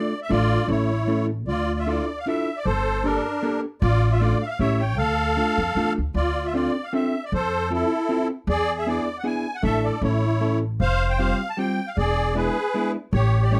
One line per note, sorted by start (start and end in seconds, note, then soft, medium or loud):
0.00 0.12 A3 medium
0.00 0.12 D4 medium
0.00 0.13 F4 medium
0.00 0.13 A4 medium
0.00 0.20 D5 medium
0.22 0.31 E5 medium
0.29 0.56 A1 loud
0.29 0.62 A3 medium
0.29 0.62 D4 medium
0.29 0.62 F4 medium
0.29 0.67 F4 medium
0.29 0.62 A4 medium
0.29 0.70 D5 loud
0.67 1.47 A1 medium
0.67 0.90 A3 medium
0.67 0.90 C#4 medium
0.67 0.90 E4 soft
0.67 1.26 E4 medium
0.67 0.90 A4 medium
0.67 1.26 C#5 medium
1.07 1.30 A3 medium
1.07 1.30 C#4 soft
1.07 1.30 E4 medium
1.07 1.30 A4 medium
1.47 1.99 D2 loud
1.47 2.05 F4 medium
1.47 1.79 D5 medium
1.79 1.88 E5 medium
1.86 2.08 D4 soft
1.86 2.09 E4 soft
1.86 2.09 F4 soft
1.86 2.09 A4 medium
1.86 2.19 D5 medium
2.19 2.27 F5 medium
2.27 2.48 D4 medium
2.27 2.48 E4 medium
2.27 2.48 F4 medium
2.27 2.49 A4 medium
2.27 2.58 E5 medium
2.57 2.66 D5 medium
2.65 3.16 G1 medium
2.65 3.22 A4 medium
2.65 3.05 C5 loud
3.04 3.25 A#3 soft
3.04 3.25 D4 soft
3.04 3.61 D4 medium
3.04 3.26 G4 soft
3.04 3.25 A4 medium
3.04 3.61 A#4 medium
3.42 3.64 A#3 medium
3.42 3.64 D4 medium
3.42 3.64 G4 soft
3.42 3.64 A4 medium
3.82 4.32 A1 loud
3.82 4.38 F4 medium
3.82 4.12 D5 loud
4.12 4.21 E5 medium
4.20 4.42 A3 medium
4.20 4.42 D4 medium
4.20 4.42 F4 soft
4.20 4.42 A4 medium
4.20 4.42 D5 medium
4.41 4.50 E5 medium
4.41 4.46 F5 medium
4.49 4.59 F5 medium
4.59 4.98 A1 medium
4.59 4.80 A3 medium
4.59 4.81 C#4 soft
4.59 4.81 E4 soft
4.59 4.81 G4 medium
4.59 4.96 C#5 medium
4.59 4.81 E5 medium
4.79 4.98 G5 medium
4.97 5.37 D2 medium
4.97 5.93 A4 medium
4.97 5.93 F5 loud
5.37 5.58 A3 medium
5.37 5.58 D4 medium
5.37 5.58 F4 soft
5.37 5.59 A4 medium
5.58 5.74 F2 medium
5.75 5.95 E2 medium
5.75 5.97 A3 medium
5.75 5.98 D4 medium
5.75 5.98 F4 medium
5.75 5.98 A4 medium
5.98 6.13 D2 medium
6.14 6.65 D2 medium
6.14 6.71 F4 medium
6.14 6.46 D5 loud
6.46 6.54 E5 medium
6.54 6.75 C4 medium
6.54 6.75 D4 soft
6.54 6.75 F4 soft
6.54 6.75 A4 medium
6.54 6.85 D5 medium
6.84 6.93 F5 medium
6.93 7.14 C4 medium
6.93 7.14 D4 medium
6.93 7.14 F4 soft
6.93 7.14 A4 medium
6.93 7.24 E5 medium
7.25 7.33 D5 medium
7.32 7.82 F2 medium
7.32 7.72 A4 medium
7.32 7.69 C5 loud
7.71 7.92 C4 medium
7.71 7.92 E4 soft
7.71 8.28 E4 medium
7.71 7.92 F4 soft
7.71 7.92 A4 medium
7.71 8.28 A4 loud
8.09 8.30 C4 medium
8.09 8.30 E4 medium
8.09 8.30 F4 soft
8.09 8.31 A4 medium
8.47 8.97 E2 loud
8.47 9.04 G#4 medium
8.47 8.76 D5 loud
8.79 8.87 E5 medium
8.86 9.07 B3 medium
8.86 9.07 D4 soft
8.86 9.08 E4 medium
8.86 9.08 G#4 medium
8.86 9.18 D5 medium
9.18 9.26 F#5 medium
9.24 9.45 B3 medium
9.24 9.45 D4 medium
9.24 9.45 E4 soft
9.24 9.46 G#4 medium
9.24 9.56 G#5 medium
9.55 9.63 F#5 medium
9.63 9.88 A1 medium
9.63 9.95 A3 medium
9.63 9.95 D4 medium
9.63 9.95 E4 medium
9.63 9.95 A4 medium
9.63 10.00 A4 medium
9.63 9.85 E5 loud
9.84 10.02 D5 medium
10.01 10.81 A1 medium
10.01 10.23 A3 medium
10.01 10.23 C#4 soft
10.01 10.23 E4 soft
10.01 10.59 E4 medium
10.01 10.23 A4 soft
10.01 10.59 C#5 medium
10.40 10.62 A3 soft
10.40 10.62 C#4 medium
10.40 10.62 E4 medium
10.40 10.63 A4 medium
10.80 11.30 F1 medium
10.80 11.37 C5 medium
10.80 11.12 F5 loud
11.10 11.19 G5 medium
11.19 11.40 G3 soft
11.19 11.40 C4 soft
11.19 11.40 F4 soft
11.19 11.41 G4 medium
11.19 11.50 F5 loud
11.50 11.58 A5 medium
11.57 11.79 G3 medium
11.57 11.79 C4 medium
11.57 11.79 F4 soft
11.57 11.80 G4 medium
11.57 11.89 G5 medium
11.87 11.97 F5 medium
11.97 12.47 E1 medium
11.97 12.35 G#4 medium
11.97 12.37 D5 loud
12.34 12.56 G#3 medium
12.34 12.56 B3 medium
12.34 12.56 D4 soft
12.34 12.56 E4 medium
12.34 12.92 G#4 medium
12.34 12.92 B4 loud
12.74 12.95 G#3 medium
12.74 12.96 B3 soft
12.74 12.95 D4 medium
12.74 12.96 E4 medium
13.13 13.60 A1 loud
13.13 13.60 G4 medium
13.13 13.44 C#5 loud
13.43 13.52 D5 medium
13.51 13.60 G3 medium
13.51 13.60 A3 soft
13.51 13.60 C#4 soft
13.51 13.60 E4 medium
13.51 13.60 C#5 loud